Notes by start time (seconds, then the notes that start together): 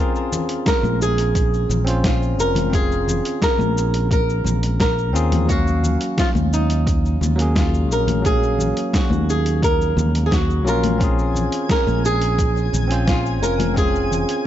Already playing: C4 C#4 A#4
0.00 F4 G#4
0.16 cabasa
0.32 low conga, cabasa
0.49 closed hi-hat, cabasa
0.66 A#4, kick, snare, closed hi-hat, cabasa
0.83 A#1, high conga, cabasa
1.02 G#4, cabasa
1.18 closed hi-hat, cabasa
1.35 kick, closed hi-hat, cabasa
1.54 cabasa
1.69 A#1, high conga, low conga, cabasa
1.84 C4 C#4 F4, closed hi-hat, cabasa
1.90 C5
2.04 F4, kick, snare, closed hi-hat, cabasa
2.23 cabasa
2.38 F1 A#4, cabasa
2.55 closed hi-hat, high conga, low conga, cabasa
2.70 C4 C#4 F4, kick, closed hi-hat
2.74 G#4, cabasa
2.92 cabasa
3.08 low conga, cabasa
3.25 closed hi-hat, cabasa
3.42 A#4, kick, snare, closed hi-hat, cabasa
3.59 A#1, high conga, cabasa
3.78 cabasa
3.94 closed hi-hat, cabasa
4.11 A#4, kick, closed hi-hat, cabasa
4.30 cabasa
4.44 A#1, high conga, low conga, cabasa
4.63 closed hi-hat, cabasa
4.80 A#4, kick, snare, closed hi-hat, cabasa
4.98 cabasa
5.13 D#2 C4 C#4 F4 G#4, cabasa
5.32 closed hi-hat, high conga, low conga, cabasa
5.46 F#3 A#3, kick, closed hi-hat
5.50 C#4 F#4 F5, cabasa
5.67 cabasa
5.84 low conga, cabasa
6.01 closed hi-hat, cabasa
6.18 F4, kick, snare, closed hi-hat, cabasa
6.35 D#2, high conga, cabasa
6.53 D#4, cabasa
6.70 closed hi-hat, cabasa
6.87 kick, closed hi-hat, cabasa
7.06 cabasa
7.21 D#2, high conga, low conga, cabasa
7.36 F#3 A#3, closed hi-hat
7.40 C#4 G#4, cabasa
7.56 F4, kick, snare, closed hi-hat, cabasa
7.74 cabasa
7.90 A#1 A#4, cabasa
8.07 closed hi-hat, high conga, low conga, cabasa
8.22 F#3 A#3 C#4 G#4, kick, closed hi-hat, cabasa
8.28 F5
8.43 cabasa
8.59 low conga, cabasa
8.77 closed hi-hat, cabasa
8.94 F#4, kick, snare, closed hi-hat, cabasa
9.10 D#2, high conga, cabasa
9.30 G#4, cabasa
9.46 closed hi-hat, cabasa
9.62 A#4, kick, closed hi-hat, cabasa
9.81 cabasa
9.97 D#2, high conga, low conga, cabasa
10.15 closed hi-hat, cabasa
10.26 G#4
10.31 F#4, kick, snare, closed hi-hat, cabasa
10.50 cabasa
10.65 A#1 F#3 A#3 C#4 F4 A#4, cabasa
10.83 closed hi-hat, high conga, low conga, cabasa
10.98 C4 C#4 F4 G#5 G#6, kick, closed hi-hat, cabasa
11.04 G#4
11.19 cabasa
11.34 low conga, cabasa
11.52 closed hi-hat, cabasa
11.69 A#4, kick, snare, closed hi-hat, cabasa
11.87 A#1, high conga, cabasa
12.05 G#4, cabasa
12.21 closed hi-hat, cabasa
12.38 kick, closed hi-hat, cabasa
12.56 high bongo, cabasa
12.73 A#1, high conga, low conga, cabasa
12.88 C4 C#4, closed hi-hat, cabasa
12.92 F4 C5
13.07 F4, kick, snare, closed hi-hat, cabasa
13.26 cabasa
13.42 F1 A#4, high bongo, cabasa
13.59 closed hi-hat, high conga, low conga, cabasa
13.74 C4 C#4, kick, closed hi-hat
13.78 F4 G#4, cabasa
13.95 cabasa
14.11 low conga, cabasa
14.29 closed hi-hat, cabasa